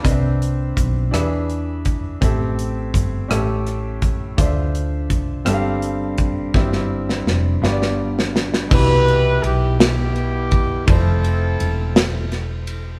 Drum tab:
CC |------------|------------|------------|------------|
RD |------------|------------|------------|------------|
HH |x-x-x-x-x-x-|x-x-x-x-x-x-|x-x-x-x-x-x-|------------|
SD |------r-----|------r-r---|------r-----|oo-oo-oo-ooo|
BD |o---o-----o-|o---o-----o-|o---o-----o-|o-----------|

CC |x-----------|------------|
RD |--x-x-x-x-x-|x-x-x-x-x-x-|
HH |------------|------------|
SD |------o-----|------o-o---|
BD |o---------o-|o-----------|